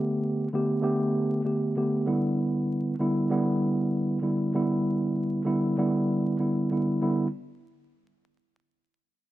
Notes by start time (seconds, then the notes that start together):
Already playing: D3 A3 B3 G4
0.53 D3 A3 B3 G4
0.82 D3 A3 B3 G4
1.44 D3 A3 B3 G4
1.76 D3 A3 B3 G4
2.06 D3 G3 B3 E4
2.99 D3 G3 B3 E4
3.30 D3 G3 B3 E4
4.22 D3 G3 B3 E4
4.54 D3 G3 B3 E4
5.45 D3 G3 B3 E4
5.77 D3 G3 B3 E4
6.39 D3 G3 B3 E4
6.71 D3 G3 B3 E4
7.02 D3 G3 B3 E4